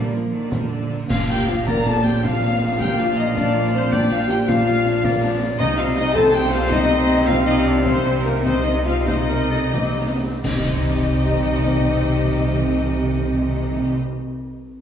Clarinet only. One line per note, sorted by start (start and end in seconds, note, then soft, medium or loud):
0.00 0.52 A#3 medium
1.10 1.69 F5 loud
1.67 2.23 D5 medium
2.23 3.94 F5 loud
3.92 4.50 G5 loud
4.49 5.06 F5 loud
5.04 5.59 D5 loud
5.60 6.14 D#5 loud
6.15 7.29 C5 loud
7.27 8.15 F5 loud
8.44 9.03 D#5 medium
9.07 9.17 C5 medium
9.29 9.51 A#4 medium
9.50 9.74 A4 medium
9.73 10.08 G4 medium